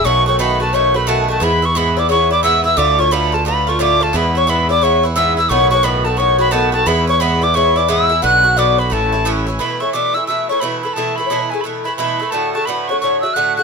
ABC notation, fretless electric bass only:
X:1
M:4/4
L:1/8
Q:"Swing" 1/4=176
K:A
V:1 name="Fretless electric bass" clef=bass
B,,,8 | E,,8 | D,,8 | E,,8 |
B,,,8 | E,,8 | B,,,4 A,,,4 | z8 |
z8 | z8 |]